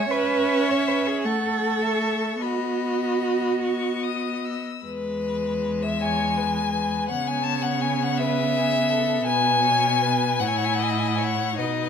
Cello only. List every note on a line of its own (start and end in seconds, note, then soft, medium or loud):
0.00 0.12 C#5 medium
0.11 0.71 B4 medium
0.69 0.89 C#5 medium
0.88 1.09 B4 medium
1.07 1.27 G#4 medium
1.25 2.43 A4 medium
2.42 4.45 F#4 medium
4.86 7.11 E2 medium
7.09 9.26 C#3 medium
9.27 10.41 B2 medium
10.40 11.60 A2 medium
11.58 11.89 B2 medium